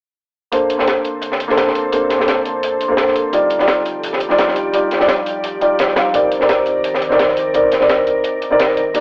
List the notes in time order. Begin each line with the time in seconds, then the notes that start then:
0.52 D3 A#3 C4 D4 A4 C5, closed hi-hat
0.70 closed hi-hat
0.78 A#3 D4 A4 C5, snare
0.88 snare, closed hi-hat
1.05 closed hi-hat
1.22 closed hi-hat
1.32 snare
1.40 closed hi-hat
1.48 A#3 D4 A4 C5, snare
1.57 snare, closed hi-hat
1.67 snare
1.75 closed hi-hat
1.92 A#3 D4 A4 C5, closed hi-hat
2.10 snare, closed hi-hat
2.18 A#3 D4 A4 C5, snare
2.28 snare, closed hi-hat
2.45 closed hi-hat
2.63 closed hi-hat
2.81 closed hi-hat
2.88 A#3 D4 A4 C5
2.97 snare, closed hi-hat
3.08 snare
3.16 closed hi-hat
3.33 D#2 F3 G3 D#4 F4 G4 D5, closed hi-hat
3.50 closed hi-hat
3.58 G3 D#4 F4 D5, snare
3.68 snare, closed hi-hat
3.85 closed hi-hat
4.03 closed hi-hat
4.13 snare
4.20 closed hi-hat
4.29 G3 D#4 F4 D5, snare
4.38 snare, closed hi-hat
4.48 snare
4.56 closed hi-hat
4.73 G3 D#4 F4 D5, closed hi-hat
4.91 snare, closed hi-hat
4.99 G3 D#4 F4 D5, snare
5.08 snare, closed hi-hat
5.26 closed hi-hat
5.44 closed hi-hat
5.61 G3 D#4 F4 D5, closed hi-hat
5.79 snare, closed hi-hat
5.88 snare
5.96 G3 D#4 F4 F5, snare, closed hi-hat
6.13 C2 D#3 C4 D#4 A#4 D5, closed hi-hat
6.32 closed hi-hat
6.39 C4 D#4 A#4 D5, snare
6.49 snare, closed hi-hat
6.66 closed hi-hat
6.84 closed hi-hat
6.94 snare
7.02 closed hi-hat
7.09 C4 D#4 A#4 D5, snare
7.19 snare, closed hi-hat
7.28 snare
7.37 closed hi-hat
7.53 C4 D#4 A#4 D5, closed hi-hat
7.72 snare, closed hi-hat
7.79 C4 D#4 A#4 D5, snare
7.89 snare, closed hi-hat
8.07 closed hi-hat
8.24 closed hi-hat
8.42 closed hi-hat
8.50 C4 D#4 A#4 D5
8.59 snare, closed hi-hat
8.69 snare
8.77 F2 G3 D#4, closed hi-hat
8.94 A#3 D#4 G4 D5, closed hi-hat